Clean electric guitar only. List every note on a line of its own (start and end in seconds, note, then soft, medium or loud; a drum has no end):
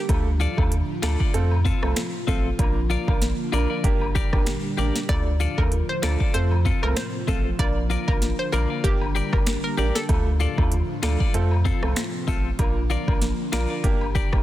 0.40 0.61 F4 medium
0.40 0.62 A4 medium
0.40 0.62 D5 medium
1.02 1.20 F4 medium
1.02 1.19 A4 loud
1.02 1.19 D5 loud
1.20 1.34 F4 medium
1.20 1.34 A4 medium
1.20 1.34 D5 medium
1.65 1.86 C4 medium
1.65 1.82 F4 medium
1.65 1.81 A4 loud
1.82 muted clean electric guitar stroke medium
2.27 2.49 C4 medium
2.27 2.49 F4 medium
2.27 2.49 A4 medium
2.90 3.11 F4 medium
2.90 3.12 A#4 medium
2.90 3.12 D5 medium
3.52 3.70 F4 medium
3.52 3.69 A#4 medium
3.52 3.69 D5 loud
3.70 3.84 F4 medium
3.70 3.84 A#4 medium
3.70 3.84 D5 medium
4.15 4.36 G4 medium
4.15 4.32 A#4 medium
4.15 4.31 D5 loud
4.33 muted clean electric guitar stroke soft
4.77 4.99 G4 medium
4.77 4.99 A#4 medium
4.77 5.00 D5 medium
5.40 5.61 F4 medium
5.40 5.62 A4 medium
5.40 5.62 D5 medium
6.02 6.20 F4 medium
6.02 6.19 A4 loud
6.02 6.19 D5 loud
6.20 6.34 F4 medium
6.20 6.34 A4 medium
6.20 6.34 D5 medium
6.65 6.86 C4 medium
6.65 6.82 F4 medium
6.65 6.81 A4 loud
6.83 muted clean electric guitar stroke medium
7.27 7.49 C4 medium
7.27 7.49 F4 medium
7.27 7.50 A4 medium
7.90 8.11 F4 medium
7.90 8.12 A#4 loud
7.90 8.12 D5 loud
8.52 8.70 F4 medium
8.52 8.69 A#4 medium
8.52 8.69 D5 loud
8.70 8.84 F4 soft
8.70 8.84 A#4 medium
8.70 8.84 D5 medium
9.15 9.36 G4 loud
9.15 9.32 A#4 medium
9.15 9.32 D5 loud
9.33 muted clean electric guitar stroke medium
9.77 9.99 G4 medium
9.77 9.99 A#4 medium
9.77 10.00 D5 loud
10.40 10.61 F4 medium
10.40 10.62 A4 medium
10.40 10.62 D5 medium
11.03 11.20 F4 loud
11.03 11.19 A4 loud
11.03 11.19 D5 loud
11.20 11.35 F4 medium
11.20 11.34 A4 medium
11.20 11.34 D5 medium
11.65 11.86 C4 medium
11.65 11.82 F4 medium
11.65 11.81 A4 loud
11.83 muted clean electric guitar stroke medium
12.27 12.49 C4 medium
12.27 12.49 F4 medium
12.27 12.50 A4 medium
12.90 13.11 F4 loud
12.90 13.12 A#4 medium
12.90 13.12 D5 loud
13.52 13.70 F4 medium
13.52 13.69 A#4 medium
13.52 13.69 D5 loud
13.70 13.84 F4 medium
13.70 13.84 A#4 medium
13.70 13.84 D5 medium
14.15 14.36 G4 medium
14.15 14.32 A#4 medium
14.15 14.31 D5 loud
14.33 muted clean electric guitar stroke soft